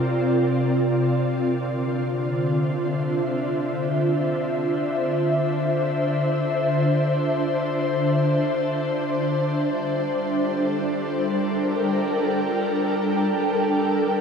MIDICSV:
0, 0, Header, 1, 2, 480
1, 0, Start_track
1, 0, Key_signature, -1, "minor"
1, 0, Tempo, 500000
1, 13641, End_track
2, 0, Start_track
2, 0, Title_t, "Ambient pad"
2, 0, Program_c, 0, 92
2, 0, Note_on_c, 0, 48, 68
2, 0, Note_on_c, 0, 60, 73
2, 0, Note_on_c, 0, 65, 78
2, 0, Note_on_c, 0, 70, 83
2, 0, Note_on_c, 0, 74, 78
2, 1495, Note_on_c, 0, 50, 68
2, 1503, Note_off_c, 0, 70, 0
2, 1505, Note_off_c, 0, 48, 0
2, 1683, Note_on_c, 0, 62, 77
2, 1807, Note_on_c, 0, 72, 73
2, 2239, Note_on_c, 0, 76, 66
2, 4520, Note_off_c, 0, 74, 0
2, 4534, Note_off_c, 0, 60, 0
2, 9053, Note_off_c, 0, 50, 0
2, 9068, Note_on_c, 0, 55, 71
2, 9400, Note_on_c, 0, 69, 67
2, 10398, Note_on_c, 0, 70, 74
2, 10708, Note_off_c, 0, 72, 0
2, 10731, Note_on_c, 0, 79, 77
2, 10876, Note_off_c, 0, 76, 0
2, 12085, Note_off_c, 0, 65, 0
2, 13641, Note_off_c, 0, 55, 0
2, 13641, Note_off_c, 0, 62, 0
2, 13641, Note_off_c, 0, 69, 0
2, 13641, Note_off_c, 0, 70, 0
2, 13641, Note_off_c, 0, 79, 0
2, 13641, End_track
0, 0, End_of_file